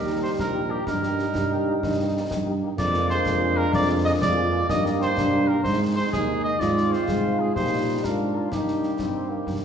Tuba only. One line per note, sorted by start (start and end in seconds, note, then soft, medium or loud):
0.00 0.31 D#2 medium
0.39 0.79 A#1 medium
0.87 1.27 G2 medium
1.35 1.75 G2 medium
1.84 2.23 G2 medium
2.30 2.70 G2 medium
2.78 3.18 F2 medium
3.25 3.65 F2 medium
3.74 4.13 F2 medium
4.21 4.61 F2 medium
4.70 5.09 G2 medium
5.17 5.57 G2 medium
5.65 6.04 G#2 medium
6.13 6.52 D#2 medium
6.60 6.96 G#2 medium
7.08 7.50 G#2 medium
7.56 7.98 A#2 medium
8.04 8.46 G#2 medium
8.51 8.94 G2 soft
8.99 9.41 G2 soft
9.47 9.65 G2 soft